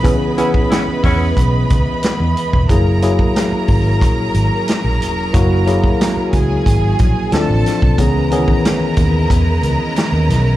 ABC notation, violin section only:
X:1
M:4/4
L:1/8
Q:1/4=91
K:C#dor
V:1 name="Violin section"
[Bb]8 | [Aa]8- | [Aa]3 [Gg]3 [=A=a]2 | [Aa]8 |]